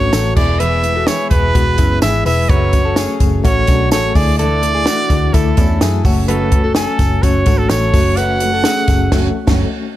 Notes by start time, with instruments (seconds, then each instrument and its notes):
Already playing: steel-string acoustic guitar F#3 A3 C#4 A4, reed electric piano A3 C#4 F#4 G#4 A4 B4, clean electric guitar D4 F#4, trumpet C#5
0.12 picked electric bass A1, steel-string acoustic guitar F#3 A3 C#4 A4, reed electric piano A3 C#4 F#4 A4, clean electric guitar F#4 A4, snare, closed hi-hat, tambourine
0.36 picked electric bass E1, reed electric piano G#3 B3 E4 G#4, steel-string acoustic guitar B3 E4 G#4, clean electric guitar E4 G#4, trumpet D5, kick, tambourine, crash
0.59 steel-string acoustic guitar E3 B3 E4 G#4, clean electric guitar G#4 B4, trumpet E5, closed hi-hat
0.83 reed electric piano G#3 B3 E4 B4, steel-string acoustic guitar E4 G#4, closed hi-hat
0.87 steel-string acoustic guitar B3
0.96 clean electric guitar F#4 A4
1.07 steel-string acoustic guitar E3 B3 E4 G#4, reed electric piano G#3 B3 E4 G#4, clean electric guitar E4 G#4, trumpet C#5, snare, closed hi-hat, tambourine
1.31 picked electric bass E1, reed electric piano G#3 B3 E4 F#4, trumpet B4, kick, closed hi-hat, tambourine
1.54 picked electric bass E1, reed electric piano G#3 B3 E4 G#4, clean electric guitar B3 F#4, kick, closed hi-hat, tambourine
1.78 picked electric bass F#1, reed electric piano G#3 B3 E4 G#4, steel-string acoustic guitar B3 E4 G#4, clean electric guitar C#4 E4, kick, closed hi-hat, tambourine
2.01 picked electric bass G#1, steel-string acoustic guitar E3 B3 E4 G#4, reed electric piano G#3 B3 E4 G#4, clean electric guitar E4 G#4, trumpet E5, snare, closed hi-hat, tambourine
2.25 picked electric bass E1, reed electric piano G#3 B3 E4 B4, steel-string acoustic guitar B3 E4 G#4, clean electric guitar G#4 B4, trumpet E5, open hi-hat, tambourine
2.49 picked electric bass F#1, steel-string acoustic guitar F#2 C#3 F#3 A3 C#4 A4, reed electric piano A3 C#4 F#4 A4, clean electric guitar F#4 B4, trumpet C#5, kick, closed hi-hat
2.73 steel-string acoustic guitar F#3 A3 C#4 A4, reed electric piano A3 C#4 F#4 B4, kick, closed hi-hat, tambourine
2.85 clean electric guitar F#4 A4
2.96 steel-string acoustic guitar F#3 A3 C#4, reed electric piano A3 C#4 F#4 A4, clean electric guitar C#4 G#4, snare, closed hi-hat, tambourine
3.00 steel-string acoustic guitar A4
3.20 picked electric bass F#1, reed electric piano A3 C#4 F#4 G#4, kick, closed hi-hat, tambourine
3.44 picked electric bass A1, reed electric piano A3 C#4 F#4 A4, clean electric guitar C#4 F#4, trumpet C#5, kick, closed hi-hat, tambourine
3.67 picked electric bass B1, steel-string acoustic guitar F#3 A3 C#4 A4, reed electric piano A3 C#4 F#4 G#4, clean electric guitar D4 F#4, kick, closed hi-hat, tambourine
3.91 picked electric bass A1, steel-string acoustic guitar F#3 A3 C#4 A4, reed electric piano A3 C#4 F#4 G#4, clean electric guitar F#4 A4, trumpet C#5, snare, closed hi-hat, tambourine
4.15 picked electric bass D2, reed electric piano A3 D4 E4 A4, steel-string acoustic guitar A3 D4 A4, clean electric guitar E4 G#4, trumpet D5, kick, open hi-hat, tambourine
4.38 steel-string acoustic guitar D3 E3 A3 D4 A4, clean electric guitar E4 A4, trumpet D5, closed hi-hat, tambourine
4.63 reed electric piano A3 D4 E4 A4, steel-string acoustic guitar A3 D4 A4, closed hi-hat, tambourine
4.75 clean electric guitar E4 G#4
4.86 steel-string acoustic guitar E3 A3 D4, reed electric piano A3 D4 E4 F#4, clean electric guitar D4 F#4, snare, closed hi-hat, tambourine
4.90 steel-string acoustic guitar A4
5.10 picked electric bass D2, reed electric piano A3 D4 E4 G#4, kick, snare, closed hi-hat, tambourine
5.34 picked electric bass D2, reed electric piano A3 D4 E4 A4, clean electric guitar A3 E4, trumpet A4, kick, closed hi-hat, tambourine
5.57 picked electric bass E2, reed electric piano A3 D4 E4 F#4, steel-string acoustic guitar A3 D4 A4, clean electric guitar C#4 E4, kick, closed hi-hat, tambourine
5.81 picked electric bass F#2, steel-string acoustic guitar E3 A3 D4 A4, reed electric piano A3 D4 E4 F#4, clean electric guitar E4 G#4, snare, closed hi-hat, tambourine
6.03 picked electric bass F#1, steel-string acoustic guitar F#3 A3 C#4 A4, reed electric piano A3 C#4 F#4 A4, clean electric guitar C#4 F#4, kick, open hi-hat, tambourine
6.28 steel-string acoustic guitar F#2 C#3 F#3 A3 C#4 A4, clean electric guitar F#4 B4, trumpet A4, closed hi-hat
6.51 steel-string acoustic guitar F#3 A3 C#4 A4, reed electric piano A3 C#4 F#4 A4, kick, closed hi-hat
6.64 clean electric guitar F#4 A4
6.75 steel-string acoustic guitar F#3 A3 C#4 A4, reed electric piano A3 C#4 F#4 A4, clean electric guitar C#4 G#5, trumpet A4, snare, closed hi-hat, tambourine
6.99 picked electric bass F#1, reed electric piano A3 C#4 F#4 A4, kick, snare, closed hi-hat, tambourine
7.23 picked electric bass F#1, reed electric piano A3 C#4 F#4 A4, clean electric guitar C#4 F#4, trumpet C#5, kick, closed hi-hat, tambourine
7.46 picked electric bass G#1, steel-string acoustic guitar F#3 A3 C#4 A4, reed electric piano A3 C#4 F#4 A4, clean electric guitar D4 F#4, kick, closed hi-hat, tambourine
7.58 trumpet A4
7.70 picked electric bass A1, steel-string acoustic guitar F#3 A3 C#4, reed electric piano A3 C#4 F#4 A4, clean electric guitar F#4 A4, trumpet C#5, snare, closed hi-hat, tambourine
7.74 steel-string acoustic guitar A4
7.93 picked electric bass F#1, steel-string acoustic guitar F#3 A3 C#4 A4, reed electric piano A3 C#4 F#4 A4, clean electric guitar C#4 F#4, kick, open hi-hat, tambourine
8.17 steel-string acoustic guitar F#2 C#3 F#3 A3 C#4 A4, clean electric guitar F#4 B4, trumpet F#5, closed hi-hat, tambourine
8.40 steel-string acoustic guitar F#3 A3 C#4 A4, reed electric piano A3 C#4 F#4 A4, closed hi-hat, tambourine
8.54 clean electric guitar F#4 A4
8.64 steel-string acoustic guitar F#3 A3 C#4, reed electric piano A3 C#4 F#4 A4, clean electric guitar C#4 G#4, snare, closed hi-hat, tambourine
8.68 steel-string acoustic guitar A4
8.88 picked electric bass F#1, reed electric piano A3 C#4 F#4 A4 E5, kick, snare, closed hi-hat, tambourine
9.12 picked electric bass F#1, steel-string acoustic guitar F#3 A3 C#4 A4, reed electric piano A3 C#4 F#4 A4 F#5, clean electric guitar C#4 F#4, kick, snare, crash
9.47 picked electric bass F#1, steel-string acoustic guitar F#3 A3 C#4 A4, reed electric piano A3 C#4 F#4, kick, snare, crash